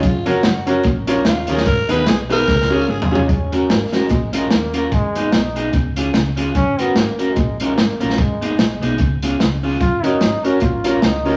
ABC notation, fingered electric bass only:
X:1
M:4/4
L:1/8
Q:"Swing" 1/4=147
K:F#
V:1 name="Fingered electric bass" clef=bass
z E,,, F,,,2 A,,,2 D,, D,, | G,,, D,, B,,,2 C,,2 G,,,2 | F,,,2 G,,,2 A,,,2 D,,2 | G,,,2 B,,,2 C,,2 C,,2 |
F,,,2 G,,,2 A,,,2 G,,, A,,, | G,,,2 A,,, B,,, C,,2 C,,2 | F,,,2 G,,,2 A,,,2 C,,2 |]